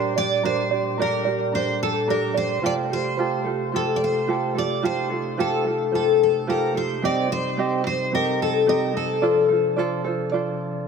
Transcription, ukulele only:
0.00 0.17 D4 medium
0.00 0.17 G4 medium
0.00 0.17 A#4 medium
0.00 0.15 D5 medium
0.16 0.43 D4 medium
0.16 0.44 G4 medium
0.16 0.44 D5 medium
0.43 0.71 D4 loud
0.43 0.72 G4 medium
0.43 0.71 A#4 medium
0.43 0.70 D5 medium
0.71 0.98 D4 soft
0.71 0.98 G4 medium
0.71 0.98 D5 medium
0.98 1.26 D4 medium
0.98 1.26 G4 medium
0.98 1.26 A#4 medium
0.98 1.24 D5 loud
1.25 1.52 D4 soft
1.25 1.54 G4 medium
1.25 1.53 D5 medium
1.52 2.07 D4 medium
1.52 2.09 G4 medium
1.52 2.06 A#4 medium
1.52 2.09 D5 medium
2.08 2.36 D4 medium
2.08 2.35 G4 medium
2.08 2.35 A#4 medium
2.08 2.33 D5 medium
2.34 2.63 D4 soft
2.34 2.63 G4 soft
2.34 2.62 D5 medium
2.62 2.91 F4 medium
2.62 2.90 G4 loud
2.62 2.88 A4 medium
2.62 2.89 C5 medium
2.90 3.17 F4 soft
2.90 3.18 G4 soft
2.90 3.17 A4 medium
3.17 3.46 F4 medium
3.17 3.45 G4 medium
3.17 3.43 A4 loud
3.17 3.44 C5 medium
3.44 3.72 F4 soft
3.44 3.73 G4 medium
3.44 3.71 A4 medium
3.72 4.27 F4 medium
3.72 4.28 G4 medium
3.72 4.28 A4 medium
3.72 4.27 C5 medium
4.27 4.55 F4 medium
4.27 4.55 G4 medium
4.27 4.54 A4 medium
4.27 4.55 C5 medium
4.55 4.82 F4 soft
4.55 4.83 G4 medium
4.55 4.82 A4 medium
4.82 5.11 F4 medium
4.82 5.11 G4 medium
4.82 5.09 A4 medium
4.82 5.10 C5 medium
5.10 5.37 F4 soft
5.10 5.38 G4 medium
5.10 5.37 A4 medium
5.37 5.65 F4 medium
5.37 5.65 G4 medium
5.37 5.63 A4 medium
5.37 5.65 C5 medium
5.65 5.92 F4 soft
5.65 5.93 G4 medium
5.65 5.92 A4 medium
5.92 6.47 F4 medium
5.92 6.48 G4 medium
5.92 6.48 A4 medium
5.92 6.47 C5 medium
6.47 6.75 F4 medium
6.47 6.75 G4 medium
6.47 6.73 A4 medium
6.47 6.75 C5 medium
6.74 7.03 F4 soft
6.74 7.03 G4 medium
6.74 7.02 A4 medium
7.02 7.30 C4 medium
7.02 7.29 G4 medium
7.02 7.30 C5 medium
7.02 7.28 D#5 medium
7.29 7.57 C4 soft
7.29 7.57 D#5 medium
7.57 7.85 C4 medium
7.57 7.84 G4 medium
7.57 7.85 C5 medium
7.57 7.83 D#5 medium
7.84 8.12 C4 medium
7.84 8.12 D#5 medium
8.12 8.67 C4 medium
8.12 8.67 G4 medium
8.12 8.66 C5 medium
8.12 8.68 D#5 medium
8.66 8.95 C4 medium
8.66 8.94 G4 medium
8.66 8.94 C5 medium
8.66 8.93 D#5 loud
8.94 9.22 C4 soft
8.94 9.22 D#5 medium
9.22 9.50 F4 medium
9.22 9.47 A4 medium
9.22 9.49 C5 medium
9.22 9.48 D5 medium
9.49 9.76 F4 soft
9.49 9.76 A4 medium
9.49 9.77 C5 soft
9.77 10.05 F4 medium
9.77 10.03 A4 loud
9.77 10.05 C5 loud
9.77 10.04 D5 medium
10.04 10.32 F4 medium
10.04 10.32 A4 medium
10.04 10.33 C5 medium
10.32 10.88 F4 medium
10.32 10.88 A4 medium
10.32 10.88 C5 medium
10.32 10.86 D5 medium

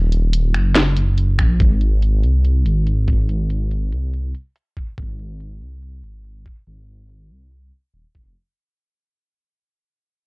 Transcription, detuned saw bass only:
0.00 0.56 D#1 loud
0.54 0.95 F#1 medium
0.96 1.40 F#1 medium
1.39 1.59 A#1 medium
1.60 2.25 G#1 loud
2.23 2.64 C2 medium
2.65 3.28 G#1 loud
3.29 3.94 G#1 medium
3.92 4.33 C2 medium
4.98 5.63 G#1 medium
5.61 6.02 C2 medium
6.03 6.45 G#1 medium
6.67 7.32 G#1 medium
7.30 7.71 C2 medium
7.94 8.05 D#1 medium
8.15 8.35 F1 medium

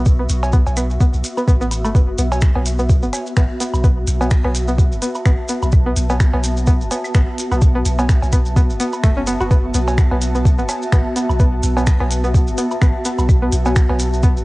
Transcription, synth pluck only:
0.19 0.22 B3 medium
0.53 0.56 B3 medium
0.77 0.85 B3 medium
1.00 1.04 B3 medium
1.37 1.41 B3 medium
1.48 1.51 B3 medium
1.61 1.65 B3 loud
1.85 1.89 A3 medium
1.95 1.98 B3 medium
2.19 2.22 B3 medium
2.56 2.62 B3 medium
2.79 2.82 B3 medium
3.03 3.05 B3 medium
3.37 3.45 B3 medium
3.60 3.63 B3 medium
3.84 3.87 B3 medium
4.21 4.27 B3 medium
4.44 4.47 B3 medium
4.68 4.71 B3 medium
5.02 5.10 B3 medium
5.26 5.29 B3 medium
5.49 5.52 B3 medium
5.86 5.92 B3 medium
6.10 6.12 B3 medium
6.33 6.36 B3 medium
6.67 6.75 B3 medium
6.91 6.94 B3 medium
7.15 7.18 B3 medium
7.52 7.58 B3 medium
7.75 7.78 B3 medium
7.99 8.01 B3 medium
8.33 8.41 B3 medium
8.56 8.60 B3 medium
8.80 8.85 B3 loud
9.04 9.11 A3 medium
9.17 9.21 C#4 medium
9.27 9.32 B3 loud
9.41 9.43 F#4 medium
9.51 9.54 B3 medium
9.74 9.80 B3 medium
10.11 10.18 B3 medium
10.35 10.37 B3 medium
10.59 10.63 B3 medium
10.93 11.00 B3 medium
11.16 11.19 B3 medium
11.40 11.45 B3 medium
11.77 11.83 B3 medium
12.00 12.03 B3 medium
12.24 12.28 B3 medium
12.58 12.66 B3 medium
12.82 12.85 B3 medium
13.05 13.10 B3 medium
13.42 13.48 B3 medium
13.66 13.68 B3 medium
13.89 13.93 B3 medium
14.23 14.31 B3 medium

